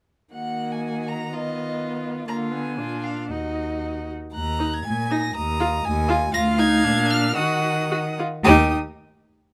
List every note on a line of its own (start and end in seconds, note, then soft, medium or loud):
0.33 2.24 D#3 soft
0.33 1.28 A#3 soft
0.33 1.34 F#4 soft
0.33 0.74 F#5 medium
0.72 1.09 G#5 medium
1.08 1.35 A#5 medium
1.32 2.26 B3 soft
1.32 2.28 F4 soft
1.32 2.05 D#5 medium
2.28 2.80 D3 medium
2.28 2.53 A#3 soft
2.28 2.75 F4 soft
2.28 2.36 A#5 medium
2.51 2.79 B3 soft
2.51 3.05 G#5 medium
2.77 3.31 A#2 soft
2.77 3.32 D4 soft
2.77 3.30 F4 soft
3.04 3.30 F5 medium
3.29 4.14 D#2 soft
3.29 4.14 D#4 soft
3.29 4.12 F#4 soft
3.29 4.08 D#5 soft
4.34 4.77 D#2 medium
4.34 4.82 A#5 medium
4.34 4.75 F#6 medium
4.59 4.72 D#4 medium
4.74 5.13 G#6 medium
4.86 5.27 A#2 medium
4.86 5.35 G#5 medium
5.11 5.22 D#4 medium
5.11 5.36 A#6 medium
5.36 5.77 D#2 medium
5.36 5.86 A#5 medium
5.36 6.08 D#6 medium
5.60 5.72 F4 medium
5.85 6.25 D#2 medium
5.85 6.34 G#5 medium
6.09 6.20 F4 medium
6.33 6.86 D2 medium
6.33 6.60 F4 medium
6.33 7.34 F5 loud
6.33 6.42 A#6 loud
6.59 6.85 D#4 medium
6.59 7.12 G#6 loud
6.84 7.37 A#2 medium
6.84 7.36 D4 medium
7.10 7.37 F6 loud
7.35 8.23 D#3 medium
7.35 7.84 F#4 medium
7.35 8.16 F#5 medium
7.35 8.18 D#6 loud
7.91 7.99 F#4 medium
8.19 8.27 F4 medium
8.44 8.73 D#2 loud
8.44 8.74 D#4 medium
8.44 8.74 G4 medium
8.44 8.74 D#6 loud